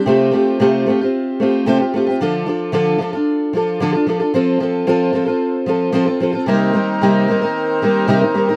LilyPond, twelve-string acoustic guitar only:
\new Staff \with { instrumentName = "Twelve-string acoustic guitar" } { \time 4/4 \key f \mixolydian \tempo 4 = 112 <c a c' f' g'>8 <a c' f' g'>8 <c a c' f' g'>8 <a c' f' g'>16 <c' f' g'>8. <a c' f' g'>8 <c a c' f' g'>16 <c' f' g'>16 <a c' f' g'>16 <c' f' g'>16 | <d f d' f' a'>8 <f d' f' a'>8 <d f d' f' a'>8 <f d' f' a'>16 <d' f' a'>8. <f d' f' a'>8 <d f d' f' a'>16 <d' f' a'>16 <f d' f' a'>16 <d' f' a'>16 | <f c' f' a'>8 <f c' f' a'>8 <f c' f' a'>8 <f c' f' a'>16 <c' f' a'>8. <f c' f' a'>8 <f c' f' a'>16 <c' f' a'>16 <f c' f' a'>16 <c' f' a'>16 | <c g bes ees' bes'>8 <g bes ees' bes'>8 <c g bes ees' bes'>8 <g bes ees' bes'>16 <bes ees' bes'>8. <g bes ees' bes'>8 <c g bes ees' bes'>16 <bes ees' bes'>16 <g bes ees' bes'>16 <bes ees' bes'>16 | }